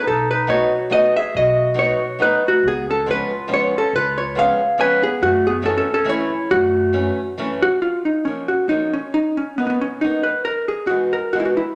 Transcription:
X:1
M:3/4
L:1/16
Q:"Swing" 1/4=138
K:F#dor
V:1 name="Hollow-body jazz guitar"
A2 B2 c4 d2 e2 | d4 c4 B2 F2 | G2 A2 B4 c2 A2 | B2 c2 ^e4 g2 G2 |
F2 G2 (3A2 A2 A2 c4 | F8 z2 F2 | [K:F#] E2 D2 C2 F2 D2 C2 | D2 C2 B,/2 B,/2 B, C2 D2 B2 |
A2 G2 F2 A2 F/2 =E/2 F E2 |]
V:2 name="Clarinet"
D2 D2 F4 F2 G2 | F4 F4 D2 A,2 | B,2 C2 ^E4 E2 C2 | ^E2 E2 G4 B2 B,2 |
A,2 B,2 (3C2 C2 C2 E4 | A,8 z4 | [K:F#] z12 | z12 |
z12 |]
V:3 name="Steel-string acoustic guitar"
z4 [F,A,B,D]2 z2 [F,A,B,D]2 z2 | z4 [F,A,B,D]2 z2 [F,A,B,D]2 z2 | z4 [^E,G,B,C]2 z2 [E,G,B,C]2 z2 | z4 [^E,G,B,C]2 z2 [E,G,B,C]2 z2 |
z4 [E,F,A,C]2 z2 [E,F,A,C]2 z2 | z4 [E,F,A,C]2 z2 [E,F,A,C]2 z2 | [K:F#] z4 [E,F,A,C]2 z2 [E,F,A,C]2 z2 | z4 [F,A,B,D]2 z2 [F,A,B,D]2 z2 |
z4 [=E,G,B,D]2 z2 [E,G,B,D]2 z2 |]
V:4 name="Upright bass" clef=bass
B,,,8 z4 | B,,,8 z4 | C,,8 z4 | C,,8 z4 |
F,,8 z4 | F,,8 z4 | [K:F#] z12 | z12 |
z12 |]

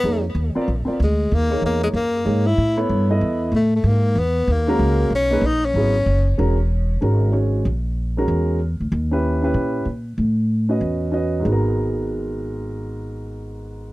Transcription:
X:1
M:4/4
L:1/8
Q:"Swing" 1/4=189
K:G#m
V:1 name="Grand piano"
[A,_E_Ac] z2 [=C=F^A=d] z [^B,^EAd] z2 | z [A,DGc]3 z2 [A,DGc] z | z [B,E=Ac]2 [B,EAd]3 z2 | z4 z [G,CFA]3 |
z [A,DGB] z2 [F,B,EG] z3 | [G,CFA] z3 [G,CFA]2 [G,CFc]2 | z3 [G,CFA]3 z2 | z [CE=GB]2 [CEGB]3 z2 |
z3 [CFBd]3 [CFBd]2 | [G,,G,B,FA]8- | [G,,G,B,FA]8 |]
V:2 name="Tenor saxophone"
B, z4 z G,2 | A,2 A, G, A,3 E- | E z4 z =A, A, | A,2 B,2 A,4 |
C2 D C4 z | z8 | z8 | z8 |
z8 | z8 | z8 |]
V:3 name="Upright bass" clef=bass
=F,,2 _E,, z A,,, z =D,,2 | D,,2 E,,2 F,,2 G,,2 | =A,,2 =G,,2 E,,2 A,,2 | G,,2 E,,2 D,,2 C,,2 |
B,,,2 A,,,2 G,,,2 F,,,2 | E,,,4 G,,,4 | A,,,4 E,,3 =D,, | D,,4 A,,2 A,,2 |
=A,,4 E,,4 | G,,,8- | G,,,8 |]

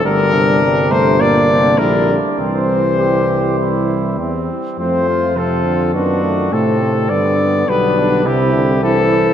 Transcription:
X:1
M:4/4
L:1/8
Q:1/4=104
K:Cmix
V:1 name="Trumpet"
B3 c d2 B z | c6 z2 | [K:C] c2 A2 ^F2 A2 | d2 B2 G2 A2 |]
V:2 name="Flugelhorn"
D4 D2 E D | C2 G2 E2 C2 | [K:C] C F3 D2 C2 | B,2 B, D E2 E2 |]
V:3 name="French horn"
G,2 G, A, B,2 G, z | G,6- G, z | [K:C] A,2 C2 B, A, A, C | B,2 G,2 C2 C2 |]
V:4 name="Trombone" clef=bass
D, C,3 B,, C, D, z | E,6- E, z | [K:C] F,2 C, D, ^D,2 C,2 | D,2 D,2 C, D, E,2 |]
V:5 name="Tuba" clef=bass
G,,,6 B,,, z | C,,6 E,, z | [K:C] F,,4 ^F,,2 A,,2 | G,,2 B,,,2 C,,4 |]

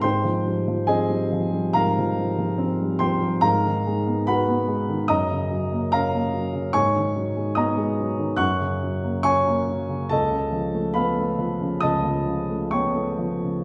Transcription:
X:1
M:4/4
L:1/16
Q:1/4=71
K:G#dor
V:1 name="Grand piano"
[^B=g^b]4 [^Gd^g]4 [Aea]6 [B=gb]2 | [Aea]4 [Bfb]4 [dad']4 [Aea]4 | [cgc']4 [dad']4 [fc'f']4 [cgc']4 | [=Ad=a]4 [Beb]4 [dad']4 [c=gc']4 |]
V:2 name="Grand piano" clef=bass
G,, E, =G, E, ^B, G, E, G, ^G,, E, =G, E, B, G, E, G, | G,, D, G, B, F B, G, D, F,, C, F, A, C A, F, C, | G,, D, F, G, B, G, F, D, F,, C, F, A, C A, F, C, | C,, C, E, =A, B, A, E, C, C,, E, C, A, B, A, E, C, |]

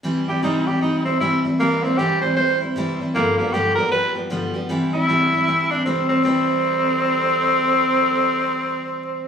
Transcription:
X:1
M:4/4
L:1/8
Q:"Swing" 1/4=155
K:C
V:1 name="Tenor saxophone"
z G _E G E C =E z | _B, C G c c z3 | _B, B, G _B =B z3 | z E4 D C C |
C8- | C8 |]
V:2 name="Steel-string acoustic guitar" clef=bass
[C,E,G,CE] [G,CE] [C,E,G,CE] [G,CE] [E,G,CE] [G,CE] [C,E,G,CE] [G,CE] | [C,E,G,CE] [G,CE] [C,E,G,CE] [G,CE] [E,G,CE] [G,CE] [C,E,G,CE] [G,CE] | [G,,D,F,G,B,G] [F,G,B,G] [G,,D,F,G,B,G] [F,G,B,G] [F,G,B,G] [F,G,B,G] [G,,D,F,G,B,G] [F,G,B,G] | [C,E,G,CE] [G,CE] [C,E,G,CE] [G,CE] [E,G,CE] [G,CE] [C,E,G,CE] [G,CE] |
[C,E,G,CE]8- | [C,E,G,CE]8 |]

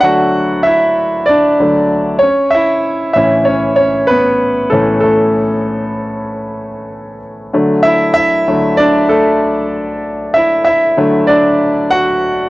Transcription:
X:1
M:4/4
L:1/16
Q:1/4=96
K:Dlyd
V:1 name="Grand piano"
[Ff]4 [Ee]4 [Dd]6 [Cc]2 | [Ee]4 [Ee]2 [Cc]2 [Cc]2 [B,B]4 [A,A]2 | [A,A]12- [A,A]2 z2 | z2 [Ee]2 [Ee]4 [Dd]2 [A,A]4 z2 |
z2 [Ee]2 [Ee]4 [Dd]4 [Ff]3 z |]
V:2 name="Grand piano" clef=bass
[D,F,A,]6 z4 [D,F,A,]2 z4 | z4 [A,,E,C]8- [A,,E,C]2 [A,,E,C]2- | [A,,E,C]12- [A,,E,C]2 z2 | [D,F,A,]6 [D,F,A,]2 z8 |
z6 [D,F,A,]2 z8 |]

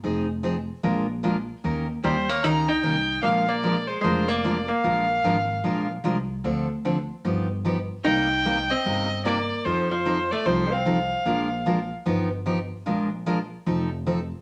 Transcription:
X:1
M:4/4
L:1/8
Q:"Swing" 1/4=150
K:Bbmix
V:1 name="Fiddle"
z8 | z2 c _d b g3 | f d2 c c d2 f- | f4- f z3 |
z8 | g3 e3 d2 | c c2 d c f3- | f3 z4 z |
z8 |]
V:2 name="Steel-string acoustic guitar"
[F,CEA] z [F,CEA] z [F,A,DFB] z [F,A,DFB] z | [E,B,_DGB] z [E,B,DGB] z [E,B,DGB] z [E,B,DGB] z | [F,A,DFB] z [F,A,DFB] z [F,A,DFB] z [F,A,DFB] z | [F,A,DFB] z [F,A,DFB] z [F,A,DFB] z [F,A,DFB] z |
[D,F,CD=A] z [D,F,CDA] z [F,=B,^DG] z [F,B,DG] z | [C,G,B,EG] z [C,G,B,EG] z [C,G,B,EG] z [C,G,B,EG] z | [F,CE=A] z [F,CEA] z [F,CEA] z [F,CEA] z | [F,A,DFB] z [F,A,DFB] z [F,=B,^DG] z [F,B,DG] z |
[F,A,DFB] z [F,A,DFB] z [F,CE=A] z [F,CEA] z |]
V:3 name="Hollow-body jazz guitar"
z8 | z2 G, B, E E3 | B, B,2 A, A, B,2 B,- | B,4- B, z3 |
z8 | E3 C3 B,2 | F, F,2 =A, F, C3- | C3 z4 z |
z8 |]
V:4 name="Upright bass" clef=bass
F,,,4 B,,,4 | E,,2 E,,2 _D,,2 C,,2 | B,,,4 F,,,4 | B,,,2 A,,,2 B,,,2 C,,2 |
D,,4 G,,,4 | C,,4 G,,,4 | F,,4 C,,4 | B,,,4 G,,,4 |
B,,,4 F,,,4 |]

